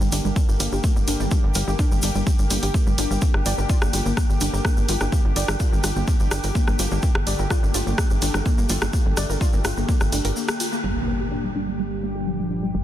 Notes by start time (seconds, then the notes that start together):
Already playing: D3 A#3 G4
0.01 G1 G3, shaker
0.12 G1 D4, open hi-hat, shaker
0.25 G1 G3, shaker
0.36 G3, kick, shaker
0.48 G1, shaker
0.60 G1 A#3, open hi-hat, shaker
0.72 G1 G4, shaker
0.84 A3, kick, shaker
0.96 G1 G3, shaker
1.08 G1 D4, open hi-hat, shaker
1.20 G1 G3, shaker
1.31 G3, kick, shaker
1.44 G1
1.54 G1 A#4, open hi-hat, shaker
1.67 G1 G4, shaker
1.79 D4, kick, shaker
1.91 G1 G3, shaker
2.02 G1 D4, open hi-hat, shaker
2.15 G1 G3, shaker
2.27 G3, kick, shaker
2.39 G1, shaker
2.50 G1 A#3, open hi-hat, shaker
2.63 G1 G4, open hi-hat, shaker
2.74 A3, kick, shaker
2.87 G1 G3, shaker
2.98 G1 D4, open hi-hat, shaker
3.10 G1 G3, shaker
3.22 D3 A#3, kick, shaker
3.34 G1, cross-stick
3.46 G1 D5, open hi-hat, shaker
3.58 G1 A#4, shaker
3.69 F4, kick, shaker
3.82 G1 A#3, cross-stick, shaker
3.93 G1 F4, open hi-hat, shaker
4.06 G1 A#3, shaker
4.17 A#3, kick, cross-stick, shaker
4.30 G1, shaker
4.41 G1 D4, open hi-hat, shaker
4.53 G1 A#4, shaker
4.65 A#3, kick, cross-stick, shaker
4.77 G1 A#3, shaker
4.88 G1 F4, open hi-hat, shaker
5.00 G1 A#3, cross-stick, shaker
5.12 A#3, kick, shaker
5.25 G1
5.36 G1 D5, open hi-hat, shaker
5.48 G1 A#4, cross-stick, shaker
5.60 F4, kick, shaker
5.72 G1 A#3, shaker
5.84 G1 F4, cross-stick, open hi-hat, shaker
5.96 G1 A#3, shaker
6.08 A#3, kick, shaker
6.20 G1, shaker
6.31 G1 D4, cross-stick, open hi-hat, shaker
6.43 G1 A#4, open hi-hat, shaker
6.55 A#3, kick, shaker
6.68 G1 A#3, cross-stick, shaker
6.79 G1 F4, open hi-hat, shaker
6.91 G1 A#3, shaker
7.02 A3 A#3, kick, shaker
7.15 G1, cross-stick
7.27 G1 D5, open hi-hat, shaker
7.38 G1 A#4, shaker
7.50 F4, kick, cross-stick, shaker
7.63 G1 A#3, shaker
7.74 G1 F4, open hi-hat, shaker
7.87 G1 A#3, shaker
7.98 A#3, kick, cross-stick, shaker
8.10 G1, shaker
8.22 G1 D4, open hi-hat, shaker
8.34 G1 A#4, cross-stick, shaker
8.46 A#3, kick, shaker
8.58 G1 A#3, shaker
8.69 G1 F4, open hi-hat, shaker
8.81 G1 A#3, cross-stick, shaker
8.93 A#3, kick, shaker
9.06 G1
9.17 G1 D5, cross-stick, open hi-hat, shaker
9.29 G1 A#4, shaker
9.41 F4, kick, shaker
9.53 G1 A#3, shaker
9.64 G1 F4, cross-stick, open hi-hat, shaker
9.77 G1 A#3, shaker
9.89 A#3, kick, shaker
10.00 G1, cross-stick, shaker
10.12 G1 D4, open hi-hat, shaker
10.25 G1 A#4, open hi-hat, shaker
10.36 A#3, shaker
10.48 A#3, cross-stick, shaker
10.60 F4, open hi-hat, shaker
10.72 A#3, shaker
10.84 G1 G2 A#2 D3 G3 A#3 G4, impact
11.08 A#4
11.20 G4
11.31 D4
11.44 G3
11.55 G3 D4
11.68 G3
11.79 G3
12.03 A#3
12.15 G4
12.27 F3 G3
12.39 G3
12.50 D4
12.63 G3
12.74 G1 G3